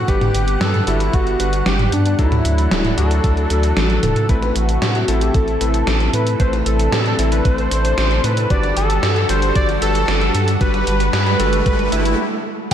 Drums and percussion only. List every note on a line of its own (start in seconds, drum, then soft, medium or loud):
0.08 kick loud
0.08 closed hi-hat medium
0.21 closed hi-hat soft
0.21 mid tom loud
0.35 closed hi-hat medium
0.48 closed hi-hat soft
0.61 snare loud
0.61 closed hi-hat medium
0.74 closed hi-hat soft
0.74 mid tom medium
0.87 closed hi-hat medium
1.00 closed hi-hat soft
1.14 kick loud
1.14 closed hi-hat medium
1.27 closed hi-hat soft
1.40 closed hi-hat medium
1.53 closed hi-hat soft
1.66 snare loud
1.66 closed hi-hat medium
1.79 closed hi-hat soft
1.79 mid tom medium
1.92 closed hi-hat medium
2.06 closed hi-hat soft
2.19 kick loud
2.19 closed hi-hat medium
2.32 closed hi-hat soft
2.32 mid tom medium
2.45 closed hi-hat medium
2.58 closed hi-hat medium
2.71 snare loud
2.71 closed hi-hat medium
2.85 closed hi-hat soft
2.85 mid tom medium
2.98 closed hi-hat medium
3.11 closed hi-hat soft
3.24 kick loud
3.24 closed hi-hat medium
3.37 closed hi-hat soft
3.50 closed hi-hat medium
3.63 closed hi-hat medium
3.77 snare loud
3.77 closed hi-hat medium
3.77 high tom medium
3.90 closed hi-hat soft
3.90 high tom medium
4.03 closed hi-hat medium
4.03 mid tom medium
4.16 closed hi-hat soft
4.16 mid tom medium
4.29 kick loud
4.29 closed hi-hat medium
4.42 closed hi-hat soft
4.42 mid tom medium
4.56 closed hi-hat medium
4.69 closed hi-hat medium
4.82 snare loud
4.82 closed hi-hat medium
4.95 closed hi-hat soft
5.08 closed hi-hat medium
5.21 closed hi-hat medium
5.34 kick loud
5.34 closed hi-hat medium
5.48 closed hi-hat soft
5.61 closed hi-hat medium
5.74 closed hi-hat medium
5.87 snare loud
5.87 closed hi-hat medium
6.00 closed hi-hat soft
6.00 mid tom medium
6.13 closed hi-hat medium
6.27 closed hi-hat medium
6.40 kick loud
6.40 closed hi-hat medium
6.53 closed hi-hat soft
6.53 mid tom medium
6.66 closed hi-hat loud
6.79 closed hi-hat medium
6.92 snare loud
6.92 closed hi-hat medium
7.06 closed hi-hat soft
7.19 closed hi-hat medium
7.32 closed hi-hat medium
7.45 kick loud
7.45 closed hi-hat medium
7.58 closed hi-hat soft
7.71 closed hi-hat loud
7.85 closed hi-hat medium
7.98 snare loud
7.98 closed hi-hat medium
8.11 closed hi-hat soft
8.24 closed hi-hat medium
8.24 mid tom medium
8.37 closed hi-hat medium
8.50 kick loud
8.50 closed hi-hat medium
8.63 closed hi-hat soft
8.63 mid tom medium
8.77 closed hi-hat medium
8.90 closed hi-hat medium
9.03 snare loud
9.03 closed hi-hat medium
9.16 closed hi-hat soft
9.29 closed hi-hat medium
9.42 closed hi-hat soft
9.55 kick loud
9.55 closed hi-hat medium
9.69 closed hi-hat soft
9.82 closed hi-hat medium
9.95 closed hi-hat medium
10.08 snare loud
10.08 closed hi-hat medium
10.21 closed hi-hat soft
10.21 mid tom medium
10.35 closed hi-hat medium
10.48 closed hi-hat medium
10.61 kick loud
10.61 closed hi-hat medium
10.74 closed hi-hat soft
10.74 mid tom loud
10.87 closed hi-hat medium
11.00 closed hi-hat soft
11.13 snare loud
11.13 closed hi-hat medium
11.26 closed hi-hat soft
11.40 closed hi-hat medium
11.53 closed hi-hat soft
11.66 kick loud
11.66 closed hi-hat medium
11.79 closed hi-hat soft
11.92 closed hi-hat medium
12.05 closed hi-hat medium